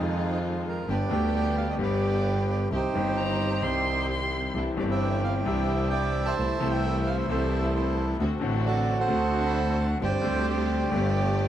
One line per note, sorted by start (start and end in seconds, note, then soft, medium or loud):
0.00 0.83 F2 medium
0.00 0.84 F2 medium
0.00 0.82 D#3 medium
0.00 0.83 F3 medium
0.00 0.83 G#3 soft
0.00 0.84 G#3 medium
0.00 0.83 C4 medium
0.00 0.39 D#4 soft
0.00 0.84 D#4 medium
0.00 0.84 F4 medium
0.00 0.40 G#4 soft
0.69 0.89 A#4 medium
0.88 1.07 G1 medium
0.88 1.08 G1 soft
0.88 1.07 G2 soft
0.88 1.07 D3 soft
0.88 1.08 G3 soft
0.88 1.08 B3 soft
0.88 1.08 D4 soft
0.88 1.77 D4 medium
0.88 1.08 G4 soft
0.88 1.77 G4 medium
0.92 1.14 B4 medium
1.10 1.76 D2 medium
1.10 1.75 D3 medium
1.10 1.76 G3 medium
1.10 1.77 B3 medium
1.10 1.77 D4 medium
1.10 1.77 G4 medium
1.10 1.78 G4 medium
1.10 1.35 G5 medium
1.36 1.57 G5 medium
1.57 1.68 F5 medium
1.70 1.75 D#5 medium
1.77 2.66 G1 medium
1.77 2.67 G1 medium
1.77 2.66 G2 medium
1.77 2.65 D3 medium
1.77 2.66 G3 medium
1.77 2.67 B3 medium
1.77 2.67 D4 medium
1.77 2.67 G4 medium
1.81 2.68 G4 medium
1.81 2.69 G4 medium
1.81 2.69 B4 medium
1.81 2.46 D5 medium
2.51 2.61 D5 medium
2.70 2.90 C2 soft
2.70 2.91 C3 soft
2.70 2.90 D#3 soft
2.70 2.90 G3 soft
2.70 2.90 C4 soft
2.70 2.91 C4 soft
2.70 2.91 D#4 soft
2.70 2.91 G4 soft
2.75 4.07 D#4 soft
2.75 4.07 G4 medium
2.75 4.07 C5 medium
2.93 3.60 G1 medium
2.93 3.60 G2 medium
2.93 3.59 D#3 medium
2.93 3.60 G3 soft
2.93 3.60 C4 medium
2.93 3.61 C4 medium
2.93 3.60 D#4 medium
2.93 3.60 G4 medium
2.93 3.61 G4 medium
3.16 3.64 A#5 medium
3.61 4.50 C2 medium
3.61 4.50 C3 medium
3.61 4.49 D#3 medium
3.61 4.50 G3 medium
3.61 4.51 C4 medium
3.61 4.51 C4 soft
3.61 4.50 D#4 medium
3.61 4.51 G4 medium
3.61 4.09 C6 medium
4.10 4.52 C6 medium
4.54 4.74 C2 soft
4.54 4.74 C3 soft
4.54 4.73 E3 soft
4.54 4.74 C4 soft
4.54 4.75 C4 soft
4.54 4.74 D4 soft
4.54 4.75 D4 soft
4.54 4.75 E4 soft
4.54 4.74 G4 soft
4.75 5.43 G1 medium
4.75 5.43 G2 medium
4.75 5.42 E3 medium
4.75 5.42 C4 medium
4.75 5.43 C4 medium
4.75 5.43 D4 medium
4.75 5.44 D4 medium
4.75 5.43 E4 medium
4.75 5.43 G4 medium
4.80 4.84 D5 medium
4.91 5.47 G4 medium
4.91 5.22 E5 medium
5.24 5.34 F5 medium
5.43 6.33 C2 medium
5.43 6.33 C3 medium
5.43 6.32 E3 medium
5.43 6.32 C4 medium
5.43 6.33 C4 medium
5.43 6.33 D4 medium
5.43 6.33 E4 medium
5.43 5.89 E5 medium
5.48 6.34 G4 medium
5.48 6.35 G4 medium
5.90 6.35 D5 medium
5.90 6.26 E5 medium
5.90 6.26 G5 medium
6.26 6.72 C5 medium
6.26 6.72 E5 medium
6.26 6.68 A5 loud
6.37 6.57 C2 soft
6.37 6.57 C2 medium
6.37 6.57 C3 soft
6.37 6.57 E3 soft
6.37 6.57 A3 soft
6.37 6.57 C4 soft
6.37 6.57 E4 medium
6.37 6.57 A4 soft
6.58 7.25 C2 medium
6.58 7.26 C2 medium
6.58 7.25 C3 medium
6.58 7.24 E3 medium
6.58 7.25 A3 medium
6.58 7.26 A3 medium
6.58 7.25 C4 medium
6.58 7.26 C4 medium
6.58 7.26 E4 medium
6.58 7.26 A4 medium
6.71 7.29 C5 medium
6.71 7.26 E5 medium
6.71 7.07 G5 medium
7.06 7.16 F5 medium
7.27 8.15 C2 medium
7.27 8.15 C3 medium
7.27 8.14 E3 medium
7.27 8.15 A3 medium
7.27 8.16 C4 medium
7.27 8.16 E4 medium
7.27 7.75 A4 medium
7.27 7.73 C5 medium
7.27 7.70 E5 medium
7.31 8.16 A4 medium
7.75 8.17 E4 soft
7.75 8.17 A4 soft
7.75 8.06 C5 medium
8.20 8.39 D2 medium
8.20 8.38 D3 medium
8.20 8.39 A3 soft
8.20 8.39 C4 soft
8.20 8.39 D4 soft
8.20 8.39 F#4 soft
8.20 8.39 F#4 medium
8.39 9.07 A1 medium
8.39 9.07 A2 medium
8.39 9.05 D3 medium
8.39 9.06 A3 medium
8.39 9.07 C4 medium
8.39 9.07 D4 medium
8.39 9.08 F#4 medium
8.44 9.08 F#4 medium
8.67 9.53 F#4 medium
8.67 8.99 A4 medium
8.67 8.98 D5 medium
9.00 9.87 A4 medium
9.00 9.87 C5 medium
9.00 9.44 F#5 medium
9.06 9.96 D2 medium
9.06 9.97 D2 medium
9.06 9.08 D3 medium
9.06 9.96 D3 medium
9.06 9.96 A3 medium
9.06 9.96 C4 medium
9.06 9.97 F#4 medium
9.11 9.97 C4 medium
9.11 9.97 D4 medium
9.11 9.98 F#4 medium
9.46 9.98 F#5 medium
9.46 9.78 B5 medium
9.81 9.91 A5 medium
10.01 10.20 G1 medium
10.01 10.21 G1 soft
10.01 10.20 G2 soft
10.01 10.20 D3 soft
10.01 10.20 G3 soft
10.01 10.20 C4 soft
10.01 10.21 C4 soft
10.01 10.21 D4 soft
10.01 10.20 G4 soft
10.01 10.21 G4 medium
10.01 10.90 C5 medium
10.01 10.49 D5 medium
10.05 10.46 G5 medium
10.22 10.89 D2 medium
10.22 10.88 D3 medium
10.22 10.89 G3 medium
10.22 10.89 C4 medium
10.22 10.90 C4 medium
10.22 10.89 D4 medium
10.22 10.89 G4 medium
10.26 10.90 G4 medium
10.49 11.48 G4 medium
10.49 11.48 D5 medium
10.90 11.48 G1 medium
10.90 11.48 G1 loud
10.90 11.48 G2 medium
10.90 11.48 D3 medium
10.90 11.48 A3 medium
10.90 11.48 B3 medium
10.90 11.48 G4 medium
10.94 11.48 G4 medium